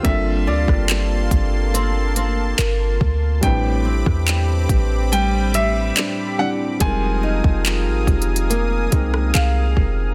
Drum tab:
HH |x-----------x-----x-----x-----x-----x-----------|x-----------x-----x-----x-----x-----x-----------|x-----------x-----x-x-x-x-----x-----x-----------|
CP |------------x-----------------------x-----------|------------x-----------------------x-----------|------------x-----------------------x-----------|
SD |---------r--------------------------------------|---------r--------------------------------------|---------------------------------r--------------|
BD |o--------o--------o-----------------------o-----|o--------o--------o-----------------------------|o--------o--------o-----------o-----------o-----|